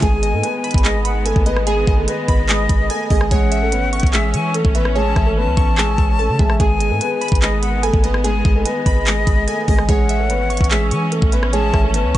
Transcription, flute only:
0.02 G#5
0.84 D#5
1.05 F#5
1.66 G#5
2.08 D#5
3.31 F#5
4.13 E5
4.34 G#5
4.96 A5
5.36 A5
6.60 G#5
7.42 D#5
7.62 F#5
8.24 G#5
8.65 D#5
9.89 F#5
10.71 E5
10.91 G#5
11.53 A5
11.94 A5

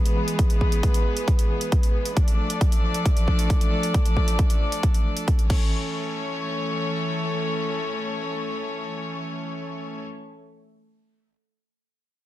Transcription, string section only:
Already playing: E3 G#3 B3 G#4 B4
2.17 F3 A3 D4 A4 D5
5.50 E3 A3 C#4 A4 C#5

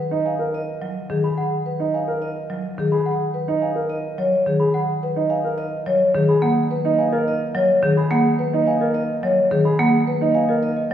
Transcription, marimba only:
0.82 F#3
1.10 D#3
2.50 F#3
2.78 D#3
4.18 F#3
4.46 D#3
5.86 F#3
6.15 D#3
6.42 A#3
7.55 F#3
7.83 D#3
8.11 A#3
9.23 F#3
9.51 D#3
9.79 A#3

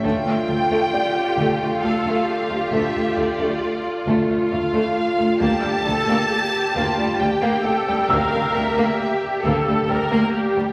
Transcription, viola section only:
0.93 G4
1.82 A4
2.27 G4
3.61 F4
5.41 G4
5.87 A4
6.31 G4
6.76 F4
7.21 G4
7.65 A4
8.10 A#4
8.99 G4
9.43 A4
9.89 A#4
10.33 G4

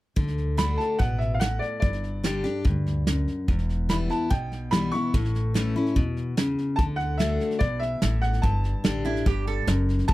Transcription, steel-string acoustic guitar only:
0.16 D3
0.57 D3 A3 D4 F#4
0.99 B2
1.41 A2
1.82 G2
2.23 D3 G3 D4 G4
2.44 D4 G4
2.65 G2
3.07 F#2
3.48 E2
3.89 E3 G3 B3 E4
4.10 B3 E4
4.30 B2
4.71 E3 G3 B3 E4
4.93 B3 E4
5.14 A2
5.54 E3 A3 C#4 E4
5.76 C#4 E4
5.96 B2
6.37 C#3
6.79 D3
7.19 D3 A3 D4 F#4
7.61 B2
8.02 A2
8.44 G2
8.84 D3 G3 D4 G4
9.05 D4 G4
9.26 G2
9.67 F#2
10.08 E2

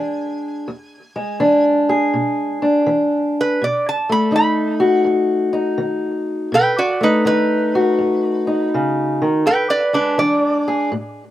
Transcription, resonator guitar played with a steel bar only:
Already playing: G#5
3.41 B4
3.64 D5
3.89 A5
4.12 B5
4.36 B5
6.54 B4 G5
6.78 F#4 D5
7.03 D#4 B4
7.27 B4
9.47 B4 G5
9.70 B4 D5
9.94 D4 B4
10.19 D5

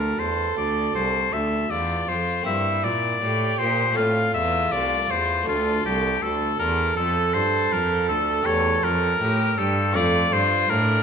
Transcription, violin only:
Already playing: A4
1.71 F4
2.46 E4
3.21 G4
3.97 F4
5.48 A4
6.23 A4
9.21 G4
9.58 G4
9.95 F4
10.69 D4

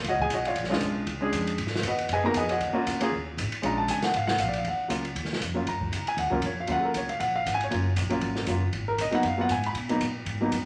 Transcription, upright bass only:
0.04 C#2
0.30 B1
0.56 A#1
0.81 B1
1.07 C#2
1.32 F2
1.59 G#2
1.83 D#2
2.09 F#2
2.35 F2
2.60 D#2
2.75 muted upright bass stroke
2.86 C#2
3.01 muted upright bass stroke
3.12 D#2
3.37 G#1
3.51 muted upright bass stroke
3.63 A#1
3.88 C#2
4.14 G#1
4.39 A#1
4.64 D#2
4.79 muted upright bass stroke
4.90 C#2
5.15 D#2
5.41 F2
5.67 F#2
5.92 C#2
6.07 muted upright bass stroke
6.17 D#2
6.25 C#2
6.33 A#1
6.42 F2
6.68 D#2
6.83 muted upright bass stroke
6.94 C#2
7.20 A#1
7.46 G#1
7.71 F#1
7.96 A#1
8.21 G#1
8.47 F#1
8.73 G#1
8.98 B1
9.13 muted upright bass stroke
9.23 F#2
9.49 G#2
9.74 B2
10.01 A#2
10.26 G#2
10.52 F#2

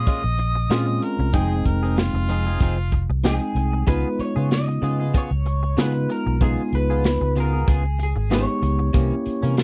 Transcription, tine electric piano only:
0.70 G#3 C4 C#4 F4
1.33 G#3 C4 D#4 G5
3.23 G#3 C4 D#4 G5
3.87 G#3 B3 D#4 F4
5.78 G#3 B3 D#4 F4
6.41 G#3 B3 D#4 F4
8.30 G#3 B3 D#4 G4
8.95 A#3 C#4 E4 G4

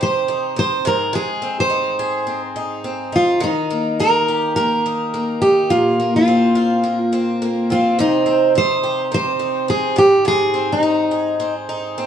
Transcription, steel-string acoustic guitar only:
0.03 C5
0.59 C5
0.87 A#4
1.15 G#4
1.60 C5
3.16 F4
3.44 D#4
4.00 A#4
4.56 A#4
5.42 G4
5.70 F4
6.16 F4
7.72 F4
8.00 D#4
8.58 C5
9.14 C5
9.70 G#4
9.98 G4
10.28 G#4
10.72 D#4

